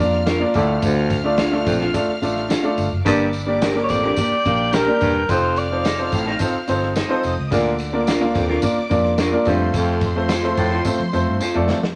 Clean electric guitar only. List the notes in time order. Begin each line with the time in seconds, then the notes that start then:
0.26 D4 F4 A#4
1.38 D4 F4 A4
1.80 D4 F4 A4
2.49 D4 F4 A4
3.61 D4 G4 A#4
4.03 D4 G4 A#4
4.72 D4 G4 A#4
5.84 C4 D#4 A4
6.26 C4 D#4 A4
6.96 C4 D#4 A4
8.07 D4 F4 A#4
8.49 D4 F4 A#4
9.18 D4 F4 A#4
10.30 C4 F4 A4
10.71 C4 F4 A4
11.40 C4 F4 A4